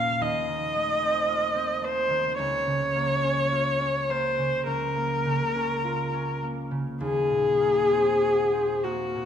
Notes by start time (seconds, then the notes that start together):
Already playing: D#2 A#2 A#3 C#4 F#4 F5
0.21 D#2 D#5
0.48 D#3
0.75 A3
1.03 C4
1.28 F4
1.54 C4
1.82 A3 C5
2.10 D#3
2.39 C#2 C#5
2.67 C#3
2.95 A#3
3.24 C#4
3.52 F4
3.81 C#4
4.09 A#3 C5
4.38 C#3
4.66 C#2 A#4
4.96 A#3
5.26 C#3
5.55 C#4
5.84 F4
6.14 C#4
6.42 A#3
6.71 C#3
7.00 D#2 G#4
7.30 A#2
7.60 A#3
7.91 C4
8.22 F#4
8.53 C4
8.84 A#3 F#4
9.15 A#2